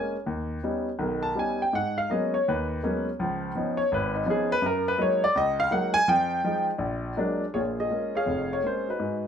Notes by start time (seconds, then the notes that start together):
Already playing: G#3 A#3 C#4 G#5
0.26 D#2
0.63 G3 B3 C#4 D#4
0.99 B1 D#3
1.23 A5
1.35 G3 B3 C#4 D#4 G#5
1.62 G5
1.73 G#2 F#5
1.98 F5
2.10 F#3 G#3 A#3 B3 C#4 D#5
2.34 C#5
2.48 D#2 B4
2.83 F#3 G#3 A#3 B3 C#4
3.20 C#2 F3
3.55 F3 B3 C#4 D#4
3.77 C#5
3.92 G#1 B4
4.14 D#4
4.26 F3 B3 C#4 D#4
4.30 G#4
4.52 B4
4.62 F#2
4.66 A#4
4.88 B4
4.98 F#3 G#3 A#3 D#4 C#5
5.24 D5
5.35 C#2 D#5
5.60 F5
5.71 F#3 G#3 A#3 D#4 F#5
5.94 G#5
6.08 F2 F3 G5
6.44 F3 G#3 D#4
6.78 A#1
7.17 F#3 G#3 A#3 D4
7.54 A#1 A#2 F4 G#4 C#5
7.80 G#4 D#5
7.90 G#3 A#3 C#4
8.15 G#4 C#5 F5
8.26 F1 F2
8.53 C#5
8.63 G#3 A#3 C#4 C5
8.89 D#4 F#4 B4
8.99 G#2